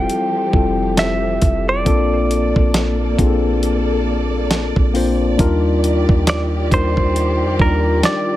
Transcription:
Already playing: F3 G3 C4 E4 F4 G4 A4 G5
0.10 closed hi-hat
0.52 F1 G3 C4 E4 F4 A4, kick
0.97 E5, snare, closed hi-hat
1.42 F1, kick, closed hi-hat
1.69 D5
1.85 A#1 A#3 C4 D4 F4 A4 D5, kick, closed hi-hat
2.31 closed hi-hat
2.56 A#1, kick
2.74 snare, closed hi-hat
3.18 A#1 A#3 C4 D4 F4 G#4, kick, closed hi-hat
3.27 A4
3.35 C5
3.63 closed hi-hat
4.51 snare, closed hi-hat
4.76 A#1, kick
4.93 A#3 C4 D4 F4 C5, open hi-hat
5.38 D#2 D#3 G3 D4 D#4 F4 G4 A#4, kick, closed hi-hat
5.84 closed hi-hat
6.09 D#2, kick
6.27 D5, snare, closed hi-hat
6.70 D#2 G3 D4 D#4 F4 A#4 C5, kick, closed hi-hat
6.97 kick
7.16 closed hi-hat
7.42 F2
7.58 D#2 G3 D4 D#4 F4 A#4, kick
8.03 D5, snare, closed hi-hat

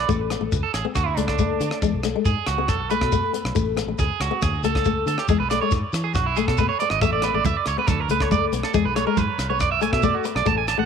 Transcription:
0.09 A1 A3, kick, shekere
0.30 B3, cross-stick, closed hi-hat, shekere
0.41 A1 A3
0.52 C#2, kick, shekere
0.63 A4
0.74 A1 G#4, cross-stick, closed hi-hat, shekere
0.85 B3
0.95 D2 F#4, kick, cross-stick, shekere
1.06 E4
1.17 C#2 A3 D4, closed hi-hat, shekere
1.28 D4, kick, cross-stick
1.39 A3, kick, shekere
1.60 D3 B3, closed hi-hat, shekere
1.71 cross-stick
1.82 E2 G#3, kick, shekere
1.94 B1
2.03 A3, cross-stick, closed hi-hat, shekere
2.15 G#3
2.25 G#2 G#4, kick, shekere
2.46 C#2 F#4, cross-stick, closed hi-hat, shekere
2.58 B3
2.68 B1 A4, kick, cross-stick, shekere
2.90 A3 B4, closed hi-hat, shekere
3.01 B2, kick, cross-stick
3.12 A3, kick, shekere
3.33 B3, closed hi-hat, shekere
3.45 B1, cross-stick
3.55 A1 A3, kick, shekere
3.77 B3, cross-stick, closed hi-hat, shekere
3.87 A1 A3
3.99 C#2 G#4, kick, shekere
4.20 C#2 F#4, cross-stick, closed hi-hat, shekere
4.31 B3
4.42 D2 G#4, kick, cross-stick, shekere
4.63 C#2 A3 A4, closed hi-hat, shekere
4.75 kick, cross-stick
4.85 A3, kick, shekere
5.06 D3 B3 A4, closed hi-hat, shekere
5.18 G4, cross-stick
5.28 E2 G#3 G#4, kick, shekere
5.39 B1 B4
5.50 A3 D5, cross-stick, closed hi-hat, shekere
5.61 G#3 C#5
5.71 G#2, kick, shekere
5.93 E3, cross-stick, closed hi-hat, shekere
6.04 G#4
6.14 B1 F#4, kick, cross-stick, shekere
6.26 E4
6.36 A3 G#4, closed hi-hat, shekere
6.48 B2 A4, kick, cross-stick
6.57 A3 B4, kick, shekere
6.69 C#5
6.80 B3 D5, closed hi-hat, shekere
6.90 G#1 D#5, cross-stick
7.01 A1 A3 E5, kick, muted conga, shekere
7.13 D5
7.22 B3 B4, cross-stick, closed hi-hat, muted conga, shekere
7.34 A1 A3 D5
7.44 C#2 E5, kick, high conga, shekere
7.57 D5
7.66 C#2 C#5, cross-stick, closed hi-hat, shekere
7.78 B3 B4
7.87 D2 A4, kick, cross-stick, muted conga, high conga, shekere
8.00 A#4
8.09 C#2 A3 B4, closed hi-hat, shekere
8.20 C#5, kick, cross-stick
8.31 A3 D5, kick, muted conga, high conga, shekere
8.52 B1 B3, closed hi-hat, shekere
8.63 A4, cross-stick
8.74 E2 G#3 G#4, kick, shekere
8.84 B1 B4
8.96 A3 C#5, cross-stick, closed hi-hat, muted conga, shekere
9.07 G#3 A#4
9.17 G#2 B4, kick, high conga, shekere
9.38 C2, cross-stick, closed hi-hat, shekere
9.50 B3 C#5
9.60 B1 D5, kick, cross-stick, muted conga, shekere
9.72 E5
9.81 A3 G#5, closed hi-hat, shekere
9.93 B2 E5, kick, cross-stick
10.03 A3 D5, kick, muted conga, high conga, shekere
10.14 F#4
10.24 B3, muted clean electric guitar stroke, closed hi-hat, shekere
10.36 B1 D5, cross-stick
10.46 A1 A3 A5, kick, muted conga, shekere
10.57 G#5
10.68 A5, cross-stick, closed hi-hat, muted conga, shekere
10.78 A1 A3 F#5

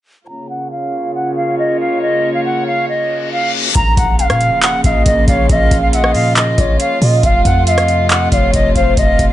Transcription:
0.28 C#3 A#3 F4 C#5 A#5
0.49 F#5
0.71 F5
1.15 F#5
1.36 F5
1.59 D#5
1.80 F5
2.02 D#5
2.34 F5
2.45 F#5
2.67 F5
2.89 D#5, reverse cymbal
3.32 F5
3.75 A#1 C#3 F3 A#3 F4 A#5, kick, closed hi-hat, impact
3.97 A#1 F#5, kick, closed hi-hat
4.19 F5, closed hi-hat
4.30 A#2, cross-stick, closed hi-hat
4.41 closed hi-hat
4.63 F#5, clap, closed hi-hat
4.84 A#1 D#5 F5, kick, closed hi-hat
5.06 A#1 D#5, kick, closed hi-hat
5.28 A#1 C#5 F5, kick, closed hi-hat
5.49 A#1 D#5 F5, kick, closed hi-hat
5.71 A#1, kick, closed hi-hat
5.82 F5
5.93 D#5 F#5, closed hi-hat
6.04 cross-stick
6.14 A#2 F5, open hi-hat
6.36 D#5, clap, closed hi-hat
6.58 A#1 C#5, kick, closed hi-hat
6.80 F5, closed hi-hat
7.02 A#2 D#5, open hi-hat
7.23 F1 C3 A3 F5, kick, closed hi-hat
7.45 F2 F#5, kick, closed hi-hat
7.67 D#5 F5, closed hi-hat
7.78 cross-stick, closed hi-hat
7.88 closed hi-hat
8.10 F#5, clap, closed hi-hat
8.32 F1 C#5 F5, kick, closed hi-hat
8.54 F1 D#5, kick, closed hi-hat
8.75 F1 C5 F5, kick, closed hi-hat
8.97 F1 D#5 F5, kick, closed hi-hat
9.19 F1, kick, closed hi-hat
9.30 F5

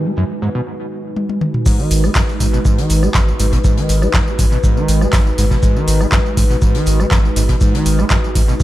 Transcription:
Already playing: G#3 D#4 F#4 B4 G#5
0.05 G#3
0.17 F#2, shaker
0.42 G#2, shaker
0.55 B2
1.16 high tom
1.29 high tom
1.41 mid tom
1.54 mid tom
1.66 G#2 G#3 D#4 F#4 B4, kick, crash, tambourine, shaker
1.79 D#3, tambourine
1.91 G#1, open hi-hat, tambourine, shaker
2.04 G#3, cross-stick, tambourine
2.14 F#2, kick, snare, clap, tambourine, shaker
2.29 tambourine
2.40 G#1 G#2, kick, open hi-hat, tambourine, shaker
2.53 B2, tambourine
2.65 G#2, kick, tambourine, shaker
2.78 D#3, closed hi-hat, tambourine
2.90 G#1, open hi-hat, tambourine, shaker
3.03 G#3, cross-stick, tambourine
3.14 G#1 F#2, kick, snare, clap, tambourine, shaker
3.28 tambourine
3.40 G#1 G#2, open hi-hat, tambourine, shaker
3.53 B2, kick, closed hi-hat, tambourine
3.64 G#2, kick, tambourine, shaker
3.77 D#3, closed hi-hat, tambourine
3.89 G#1, open hi-hat, tambourine, shaker
4.02 G#3, cross-stick, tambourine
4.13 F#2, kick, snare, clap, tambourine, shaker
4.28 tambourine
4.39 G#1 G#2, kick, open hi-hat, tambourine, shaker
4.52 B2, tambourine
4.64 G#2, kick, tambourine, shaker
4.77 D#3, tambourine
4.88 G#1, open hi-hat, tambourine, shaker
5.01 G#3, cross-stick, tambourine
5.13 G#1 F#2, kick, snare, clap, open hi-hat, tambourine, shaker
5.27 tambourine
5.38 G#1 G#2, open hi-hat, tambourine, shaker
5.50 B2, kick, snare, tambourine
5.63 G#2, kick, tambourine, shaker
5.76 D#3, tambourine
5.88 G#1, open hi-hat, tambourine, shaker
6.01 G#3, cross-stick, tambourine
6.12 F#2, kick, snare, clap, tambourine, shaker
6.26 tambourine
6.37 G#1 G#2, kick, open hi-hat, tambourine, shaker
6.50 B2, tambourine
6.62 G#2, kick, tambourine, shaker
6.75 D#3, closed hi-hat, tambourine
6.86 G#1, open hi-hat, tambourine, shaker
7.00 G#3, cross-stick, tambourine
7.11 G#1 F#2, kick, snare, clap, tambourine, shaker
7.25 tambourine
7.36 G#1 G#2, open hi-hat, tambourine, shaker
7.49 B2, kick, closed hi-hat, tambourine
7.61 G#2, kick, tambourine, shaker
7.74 D#3, closed hi-hat, tambourine
7.86 G#1, open hi-hat, tambourine, shaker
7.99 G#3, cross-stick, tambourine
8.10 F#2, kick, snare, clap, tambourine, shaker
8.24 tambourine
8.35 G#1 G#2, kick, open hi-hat, tambourine, shaker
8.48 B2, tambourine
8.60 G#2, shaker

